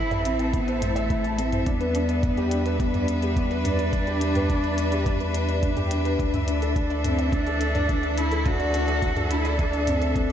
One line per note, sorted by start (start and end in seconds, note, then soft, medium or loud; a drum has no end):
0.00 1.64 A1 medium
0.00 1.67 E3 medium
0.00 1.67 C4 medium
0.00 0.25 E4 loud
0.00 0.26 E4 loud
0.00 3.48 A4 medium
0.00 0.68 C5 loud
0.00 0.11 E5 loud
0.00 10.32 E5 medium
0.00 0.40 A5 medium
0.11 0.24 E5 loud
0.11 closed hi-hat soft
0.11 mid tom medium
0.25 0.53 C4 medium
0.25 0.33 E4 loud
0.25 closed hi-hat medium
0.39 0.48 A5 medium
0.39 closed hi-hat soft
0.53 0.83 B3 medium
0.53 0.67 E4 medium
0.53 kick loud
0.53 closed hi-hat soft
0.68 0.76 C5 loud
0.68 closed hi-hat soft
0.81 1.39 A3 loud
0.81 0.95 E4 medium
0.81 closed hi-hat medium
0.81 mid tom medium
0.96 1.09 E5 loud
0.96 closed hi-hat soft
1.10 1.24 E4 loud
1.10 kick loud
1.10 closed hi-hat soft
1.24 1.38 A5 medium
1.24 closed hi-hat soft
1.38 1.68 C4 medium
1.38 1.52 E4 medium
1.38 closed hi-hat medium
1.52 1.66 C5 medium
1.52 closed hi-hat soft
1.52 mid tom medium
1.66 6.17 E2 medium
1.66 6.19 G3 medium
1.66 2.79 B3 loud
1.66 1.80 D4 loud
1.66 kick loud
1.66 closed hi-hat soft
1.80 1.94 B4 loud
1.80 closed hi-hat soft
1.95 2.03 D4 loud
1.95 closed hi-hat medium
2.01 10.32 D4 medium
2.09 2.17 D5 medium
2.09 closed hi-hat soft
2.23 2.37 D4 medium
2.23 7.28 B4 medium
2.23 kick loud
2.23 closed hi-hat soft
2.23 mid tom medium
2.38 2.46 G4 loud
2.38 closed hi-hat soft
2.51 2.65 D4 medium
2.51 closed hi-hat medium
2.66 2.79 B4 loud
2.66 closed hi-hat soft
2.79 3.66 B3 loud
2.79 2.93 D4 loud
2.79 kick loud
2.79 closed hi-hat soft
2.94 3.08 D5 medium
2.94 closed hi-hat soft
2.94 mid tom medium
3.08 3.22 D4 medium
3.08 closed hi-hat medium
3.22 3.36 G4 medium
3.22 closed hi-hat soft
3.36 3.50 D4 loud
3.36 kick loud
3.36 closed hi-hat soft
3.51 3.64 B4 loud
3.51 closed hi-hat soft
3.64 5.91 D4 loud
3.64 3.73 D4 loud
3.64 closed hi-hat medium
3.64 mid tom medium
3.79 3.87 D5 medium
3.79 closed hi-hat soft
3.93 4.07 D4 medium
3.93 kick loud
3.93 closed hi-hat soft
4.07 4.15 G4 loud
4.07 closed hi-hat soft
4.21 4.35 D4 medium
4.21 closed hi-hat medium
4.35 4.49 B4 medium
4.35 closed hi-hat soft
4.35 mid tom medium
4.50 4.63 D4 medium
4.50 kick loud
4.50 closed hi-hat soft
4.64 4.77 D5 medium
4.64 closed hi-hat soft
4.78 4.91 D4 medium
4.78 closed hi-hat medium
4.92 5.06 G4 medium
4.92 closed hi-hat soft
5.06 5.20 D4 loud
5.06 kick loud
5.06 closed hi-hat soft
5.06 mid tom medium
5.20 5.34 B4 loud
5.20 closed hi-hat soft
5.34 5.43 D4 medium
5.34 closed hi-hat medium
5.49 5.57 D5 medium
5.49 closed hi-hat soft
5.63 5.76 D4 medium
5.63 kick loud
5.63 closed hi-hat soft
5.77 5.85 G4 loud
5.77 closed hi-hat soft
5.77 mid tom medium
5.91 6.05 D4 medium
5.91 closed hi-hat medium
6.05 6.19 B4 loud
6.05 closed hi-hat soft
6.19 10.32 D2 medium
6.19 10.32 E3 medium
6.19 6.33 D4 loud
6.19 kick loud
6.19 closed hi-hat soft
6.34 6.47 E5 medium
6.34 closed hi-hat soft
6.34 mid tom medium
6.47 6.61 D4 medium
6.47 10.32 A4 loud
6.47 closed hi-hat medium
6.62 6.75 A4 medium
6.62 closed hi-hat soft
6.76 6.90 D4 medium
6.76 kick loud
6.76 closed hi-hat soft
6.90 7.04 D5 loud
6.90 closed hi-hat soft
7.04 7.34 C4 medium
7.04 7.12 D4 medium
7.04 closed hi-hat medium
7.04 mid tom medium
7.19 7.27 E5 medium
7.19 closed hi-hat soft
7.32 7.46 D4 medium
7.32 8.19 D4 loud
7.32 kick loud
7.32 closed hi-hat soft
7.47 7.55 A4 loud
7.47 closed hi-hat soft
7.61 7.74 D4 medium
7.61 closed hi-hat medium
7.75 7.88 D5 loud
7.75 closed hi-hat soft
7.75 mid tom medium
7.89 8.03 D4 medium
7.89 kick loud
7.89 closed hi-hat soft
8.03 8.17 E5 medium
8.03 closed hi-hat soft
8.17 8.31 D4 medium
8.17 8.48 E4 loud
8.17 closed hi-hat medium
8.32 8.45 A4 medium
8.32 closed hi-hat soft
8.46 8.59 D4 loud
8.46 9.32 F#4 loud
8.46 kick loud
8.46 closed hi-hat soft
8.46 mid tom medium
8.60 8.73 D5 loud
8.60 closed hi-hat soft
8.74 8.82 D4 loud
8.74 closed hi-hat medium
8.88 8.96 E5 medium
8.88 closed hi-hat soft
9.02 9.16 D4 medium
9.02 kick medium
9.02 closed hi-hat soft
9.16 9.25 A4 loud
9.16 closed hi-hat soft
9.16 mid tom medium
9.30 9.44 D4 medium
9.30 9.59 E4 loud
9.30 closed hi-hat medium
9.45 9.58 D5 loud
9.45 closed hi-hat soft
9.59 9.72 D4 loud
9.59 9.89 D4 medium
9.59 kick loud
9.59 closed hi-hat soft
9.73 9.86 E5 medium
9.73 closed hi-hat soft
9.87 10.32 C4 medium
9.87 10.01 D4 medium
9.87 closed hi-hat medium
9.87 mid tom medium
10.01 10.15 A4 medium
10.01 closed hi-hat soft
10.15 10.29 D4 loud
10.15 kick loud
10.15 closed hi-hat soft